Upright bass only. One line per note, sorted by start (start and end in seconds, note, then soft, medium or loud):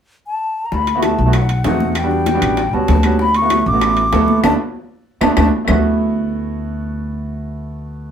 0.72 1.15 D2 medium
1.18 1.62 B1 medium
1.65 2.36 E2 medium
2.42 2.71 A1 medium
2.73 2.87 C#2 medium
2.88 3.60 D2 medium
3.66 4.09 A1 medium
4.13 4.42 D2 medium
4.44 4.55 D2 medium
5.21 5.33 D2 medium
5.37 5.48 D2 medium
5.68 8.11 D2 medium